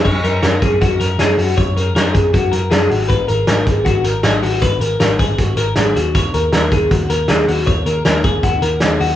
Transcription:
<<
  \new Staff \with { instrumentName = "Clean electric guitar" } { \time 4/4 \key fis \major \tempo 4 = 157 cis''8 ais'8 ais'8 gis'8 fis'8 ais'8 gis'8 fis'8 | cis''8 ais'8 ais'8 gis'8 fis'8 ais'8 gis'8 fis'8 | b'8 ais'8 ais'8 gis'8 fis'8 ais'8 gis'8 fis'8 | b'8 ais'8 ais'8 gis'8 fis'8 ais'8 gis'8 fis'8 |
cis''8 ais'8 ais'8 gis'8 fis'8 ais'8 gis'8 fis'8 | cis''8 ais'8 ais'8 gis'8 fis'8 ais'8 gis'8 fis'8 | }
  \new Staff \with { instrumentName = "Picked electric bass" } { \clef bass \time 4/4 \key fis \major fis,8 fis,8 fis,8 fis,8 fis,8 fis,8 fis,8 fis,8 | fis,8 fis,8 fis,8 fis,8 fis,8 fis,8 fis,8 gis,,8~ | gis,,8 gis,,8 gis,,8 gis,,8 gis,,8 gis,,8 gis,,8 gis,,8 | gis,,8 gis,,8 gis,,8 gis,,8 gis,,8 gis,,8 gis,,8 dis,8~ |
dis,8 dis,8 dis,8 dis,8 dis,8 dis,8 dis,8 dis,8 | dis,8 dis,8 dis,8 dis,8 dis,8 dis,8 dis,8 dis,8 | }
  \new DrumStaff \with { instrumentName = "Drums" } \drummode { \time 4/4 <cymc bd>8 hh8 <hh sn>8 <hh bd>8 <hh bd>8 hh8 <hh sn>8 hho8 | <hh bd>8 hh8 <hh sn>8 <hh bd>8 <hh bd>8 hh8 <hh sn>8 hho8 | <hh bd>8 hh8 <hh sn>8 <hh bd>8 <hh bd>8 hh8 <hh sn>8 hho8 | <hh bd>8 hh8 <hh sn>8 <hh bd>8 <hh bd>8 hh8 <hh sn>8 hh8 |
<hh bd>8 hh8 <hh sn>8 <hh bd>8 <hh bd>8 hh8 <hh sn>8 hho8 | <hh bd>8 hh8 <hh sn>8 <hh bd>8 <hh bd>8 hh8 <hh sn>8 hho8 | }
>>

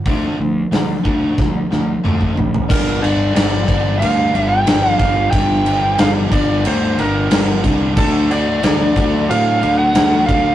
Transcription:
<<
  \new Staff \with { instrumentName = "Electric slide guitar" } { \time 4/4 \key d \phrygian \tempo 4 = 91 r1 | \key g \minor bes'8 d''8 d''4 f''8. g''8. f''8 | g''4 f''8 d''8 c''8 bes'4 r8 | a'8 d''8 d''4 f''8. fis''8. f''8 | }
  \new Staff \with { instrumentName = "Reed electric piano" } { \time 4/4 \key d \phrygian r1 | \key g \minor <d' g' bes' d''>8 <d' g' bes' d''>8 <d' g' bes' c''>8 <d' g' bes' c''>8 <d' g' bes' d''>8 <d' g' bes' e''>8 <d' g' bes' d''>8 <d' g' bes' f''>8 | <d' g' bes' e''>8 <d' g' bes' c''>8 <d' g' bes' d''>8 <d' g' bes' d''>8 <d' g' bes' d''>8 <d' g' bes' d''>8 <d' g' bes' d''>8 <d' g' bes' d''>8 | <d' fis' a' d''>8 <d' fis' a' d''>8 <d' fis' a' d''>8 <d' fis' a' d''>8 <d' fis' a' c''>8 <d' fis' a' d''>8 <d' fis' a' d''>8 <d' fis' a' c''>8 | }
  \new Staff \with { instrumentName = "Distorted electric guitar" } { \clef bass \time 4/4 \key d \phrygian <d f a>8 <d f>8 <d f>8 <d f a>8 <d f>8 <d f>8 <d f a>8 <d f>8 | \key g \minor <g, d g bes d'>8 <g, d g bes d'>8 <g, d g bes d'>8 <g, d g bes d'>8 <g, d g bes d'>8 <g, d g bes d'>8 <g, d g bes d'>8 <g, d g bes d'>8 | <g, d g bes d'>8 <g, d g bes d'>8 <g, d g bes d'>8 <g, d g bes d'>8 <g, d g bes d'>8 <g, d g bes d'>8 <g, d g bes d'>8 <g, d g bes d'>8 | <d fis a d'>8 <d fis a d'>8 <d fis a d'>8 <d fis a d'>8 <d fis a d'>8 <d fis a d'>8 <d fis a d'>8 <d fis a d'>8 | }
  \new Staff \with { instrumentName = "Overdriven electric guitar" } { \clef bass \time 4/4 \key d \phrygian <d a d'>8 <d a>8 <d a>8 <d a d'>8 <d a>8 <d a>8 <d a d'>8 <d a>8 | \key g \minor <g, d g>8 <g, d g>8 <g, d g>8 <g, d g>8 <g, d g>8 <g, d g>8 <g, d g>8 <g, d g>8 | <g, d g>8 <g, d g>8 <g, d g>8 <g, d g>8 <g, d g>8 <g, d g>8 <g, d g>8 <g, d g>8 | <d a d'>8 <d a d'>8 <d a d'>8 <d a d'>8 <d a d'>8 <d a d'>8 <d a d'>8 <d a d'>8 | }
  \new Staff \with { instrumentName = "Fingered electric bass" } { \clef bass \time 4/4 \key d \phrygian d,8 d,8 d,8 d,8 d,8 d,8 d,8 a,,8 | \key g \minor g,,4 g,,8 g,,8 d,8 g,,8 g,,8 g,,8 | g,,4 g,,8 g,,8 d,8 g,,8 g,,8 c,8 | d,4 d,8 d,8 a,8 d,8 d,8 d,8 | }
  \new DrumStaff \with { instrumentName = "Drums" } \drummode { \time 4/4 <hho bd>4 <hho sn>8 bd8 <bd sn>8 sn8 toml16 bd16 tomfh16 tomfh16 | <cymc bd>8 cymc8 <cymc sn>8 <cymc bd>8 cymc8 cymc8 <cymc sn>8 <cymc bd>8 | <cymc bd>8 cymc8 <cymc sn>8 <cymc bd>8 cymc8 cymc8 <cymc sn>8 <cymc bd>8 | <cymc bd>8 cymc8 <cymc sn>8 <cymc bd>8 cymc8 cymc8 <cymc sn>8 <cymc bd>8 | }
>>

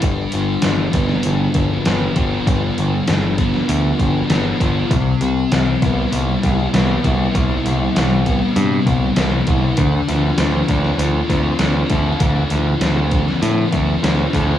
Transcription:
<<
  \new Staff \with { instrumentName = "Distorted electric guitar" } { \clef bass \time 4/4 \key g \mixolydian \tempo 4 = 98 g,8 d8 f8 b8 d8 f8 b8 f'8 | g,8 d8 f8 b8 d8 f8 b8 f'8 | c8 c8 g8 b8 c8 g8 b8 e'8 | c8 c8 g8 b8 c8 g8 b8 e'8 |
d8 f8 c'8 d'8 f8 c'8 d'8 a'8 | d8 f8 c'8 d'8 f8 c'8 d'8 a'8 | }
  \new Staff \with { instrumentName = "Picked electric bass" } { \clef bass \time 4/4 \key g \mixolydian g,,8 g,,8 g,,8 g,,8 g,,8 g,,8 g,,8 g,,8 | g,,8 g,,8 g,,4 d,8 g,,8 g,,8 g,,8 | c,8 c,8 c,8 c,8 c,8 c,8 c,8 c,8 | c,8 c,8 c,4 g,8 c,8 c,8 c,8 |
d,8 d,8 d,8 d,8 d,8 d,8 d,8 d,8 | d,8 d,8 d,4 a,8 d,8 d,8 d,8 | }
  \new DrumStaff \with { instrumentName = "Drums" } \drummode { \time 4/4 <hho bd>8 hho8 <hho sn>8 <hho bd>16 sn16 hho8 <hho bd>8 <hho sn>8 <hho bd>8 | <hho bd>8 hho8 <hho sn>8 <hho bd>16 sn16 hho8 <hho bd>8 <hho sn>8 <hho bd>8 | <hho bd>8 hho8 <hho sn>8 <hho bd>8 hho8 <hho bd>8 <hho sn>8 <hho bd>8 | <hho bd>8 hho8 <hho sn>8 <hho bd>8 hho8 <hho bd>8 <hho sn>8 <hho bd>8 |
<hho bd>8 hho8 <hho sn>8 <hho bd>16 sn16 hho8 <hho bd>8 <hho sn>8 <hho bd>8 | <hho bd>8 hho8 <hho sn>8 <hho bd>16 sn16 hho8 <hho bd>8 <hho sn>8 <hho bd>8 | }
>>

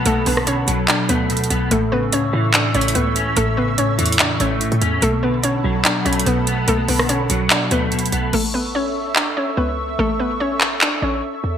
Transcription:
<<
  \new Staff \with { instrumentName = "Analog synth pad" } { \time 4/4 \key a \major \tempo 4 = 145 << { <fis'' a'' b''>1 | <e'' cis''' e'''>1~ | <e'' cis''' e'''>1 | <fis'' a'' b''>1~ |
<fis'' a'' b''>1 | <e'' cis''' e'''>1~ | <e'' cis''' e'''>1 | } \\ { a'1~ | a'1~ | a'1 | a'1~ |
a'1 | a'1~ | a'1 | } >> }
  \new Staff \with { instrumentName = "Synth pluck" } { \time 4/4 \key a \major <a a'>8 <b b'>8 <cis' cis''>4 <d' d''>8 <b b'>4. | <a a'>8 <b b'>8 <cis' cis''>4 <d' d''>8 <cis' cis''>8 <b b'>4 | <a a'>8 <b b'>8 <cis' cis''>4 <d' d''>8 <cis' cis''>4. | <a a'>8 <b b'>8 <cis' cis''>4 <d' d''>8 <cis' cis''>8 <b b'>4 |
<a a'>8 <b b'>8 <cis' cis''>4 <d' d''>8 <b b'>4. | <a a'>8 <b b'>8 <cis' cis''>4 <d' d''>8 <cis' cis''>8 <b b'>4 | <a a'>8 <b b'>8 <cis' cis''>4 <d' d''>8 <cis' cis''>4. | }
  \new Staff \with { instrumentName = "Clean electric guitar" } { \clef bass \time 4/4 \key a \major <b, a b>8 d8 b,8 fis8 b,8 a8 b,8 b8 | a,8 cis8 a,8 e8 a,8 a8 a,8 cis'8 | a,8 cis8 a,8 e8 a,8 a8 a,8 cis'8 | b,8 d8 b,8 fis8 b,8 a8 b,8 b8 |
b,8 d8 b,8 fis4 a8 b,8 b8 | r1 | r1 | }
  \new Staff \with { instrumentName = "808-style bass" } { \clef bass \time 4/4 \key a \major b,,8 b,,4 b,,8 r8 d,4 b,,8 | a,,4 cis,8 a,4 a,,8 cis,4 | a,,4. e,4 a,,8. a,16 e,8 | b,,4. b,,8 r8 b,,8 b,,4 |
b,,8 b,,4 b,,8 r8 d,4 b,,8 | a,,2~ a,,16 cis,8. cis,4 | a,,2~ a,,8 a,,8 r8 e,8 | }
  \new DrumStaff \with { instrumentName = "Drums" } \drummode { \time 4/4 hh8 hho16 ss16 hh8 hh8 <hc hh>8 hh8 \tuplet 3/2 { hh16 hh16 hh16 hh16 r16 r16 } | hh4 hh4 \tuplet 3/2 { <hc hh>16 r16 r16 hh16 hh16 hh16 } hh8 hh8 | hh4 \tuplet 3/2 { hh16 r16 r16 hh16 hh16 hh16 } <hc hh>8 hh8 hh16 hh16 hh8 | hh4 hh4 \tuplet 3/2 { <hc hh>16 r16 r16 hh16 hh16 hh16 } hh8 hh8 |
hh8 hho16 ss16 hh8 hh8 <hc hh>8 hh8 \tuplet 3/2 { hh16 hh16 hh16 hh16 r16 r16 } | cymc4 r4 hc4 r4 | r4 r8 hc8 hc4 r4 | }
>>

